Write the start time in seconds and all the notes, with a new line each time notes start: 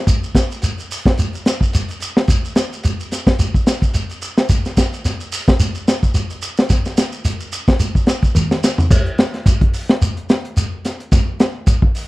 0.07 kick, closed hi-hat, shekere
0.24 shekere
0.35 kick, snare, closed hi-hat, shekere
0.50 closed hi-hat, shekere
0.62 closed hi-hat, shekere
0.78 closed hi-hat, shekere
0.91 open hi-hat, shekere
1.06 kick, snare, closed hi-hat, shekere
1.18 closed hi-hat, shekere
1.33 closed hi-hat, shekere
1.45 snare, closed hi-hat, shekere
1.61 kick, shekere
1.73 closed hi-hat, shekere
1.88 closed hi-hat, shekere
2.00 closed hi-hat, shekere
2.17 snare, shekere
2.28 kick, closed hi-hat, shekere
2.45 shekere
2.55 snare, closed hi-hat, shekere
2.73 shekere
2.83 closed hi-hat, shekere
3.00 shekere
3.11 snare, closed hi-hat, shekere
3.27 kick, snare, closed hi-hat, shekere
3.39 closed hi-hat, shekere
3.54 kick, shekere
3.66 snare, closed hi-hat, shekere
3.82 kick, closed hi-hat, shekere
3.94 closed hi-hat, shekere
4.09 closed hi-hat, shekere
4.22 closed hi-hat, shekere
4.37 snare, closed hi-hat, shekere
4.49 kick, closed hi-hat, shekere
4.65 snare, shekere
4.77 kick, snare, closed hi-hat, shekere
4.93 closed hi-hat, shekere
5.05 snare, closed hi-hat, shekere
5.20 closed hi-hat, shekere
5.32 open hi-hat, shekere
5.48 kick, snare, closed hi-hat, shekere
5.60 closed hi-hat, shekere
5.75 closed hi-hat, shekere
5.87 snare, closed hi-hat, shekere
6.03 kick, shekere
6.14 closed hi-hat, shekere
6.30 closed hi-hat, shekere
6.42 closed hi-hat, shekere
6.57 snare, shekere
6.70 kick, snare, closed hi-hat, shekere
6.85 snare, shekere
6.97 snare, closed hi-hat, shekere
7.12 shekere
7.25 closed hi-hat, shekere
7.40 shekere
7.52 closed hi-hat, shekere
7.68 kick, snare, closed hi-hat, shekere
7.79 closed hi-hat, shekere
7.95 kick, shekere
8.06 snare, closed hi-hat, shekere
8.22 kick, closed hi-hat, shekere
8.35 high tom, shekere
8.51 snare, shekere
8.64 snare, shekere
8.78 floor tom, shekere
8.91 kick, crash, shekere
9.06 closed hi-hat
9.18 snare, closed hi-hat, shekere
9.34 snare, closed hi-hat
9.46 kick, closed hi-hat, shekere
9.61 kick, closed hi-hat
9.73 open hi-hat, shekere
9.89 snare, closed hi-hat
10.02 closed hi-hat, shekere
10.17 closed hi-hat
10.29 snare, closed hi-hat, shekere
10.45 closed hi-hat
10.57 closed hi-hat, shekere
10.85 snare, closed hi-hat, shekere
11.00 closed hi-hat
11.12 kick, snare, closed hi-hat, shekere
11.40 snare, closed hi-hat, shekere
11.67 kick, closed hi-hat, shekere
11.82 kick
11.95 open hi-hat, shekere